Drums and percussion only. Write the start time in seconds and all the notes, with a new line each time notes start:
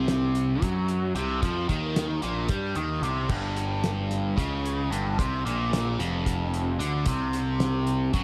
0.08 snare, closed hi-hat
0.35 closed hi-hat
0.62 kick, closed hi-hat
0.88 closed hi-hat
1.16 closed hi-hat
1.43 kick, closed hi-hat
1.69 kick, closed hi-hat
1.96 snare, closed hi-hat
2.22 closed hi-hat
2.49 kick, closed hi-hat
2.75 closed hi-hat
3.03 closed hi-hat
3.29 kick, crash
3.56 closed hi-hat
3.84 snare, closed hi-hat
4.11 snare, closed hi-hat
4.38 kick, snare, closed hi-hat
4.66 closed hi-hat
4.92 closed hi-hat
5.19 kick, closed hi-hat
5.47 closed hi-hat
5.73 snare, closed hi-hat
6.00 closed hi-hat
6.26 kick, closed hi-hat
6.54 closed hi-hat
6.80 closed hi-hat
7.06 kick, closed hi-hat
7.33 closed hi-hat
7.60 snare, closed hi-hat
7.87 closed hi-hat
8.14 kick, closed hi-hat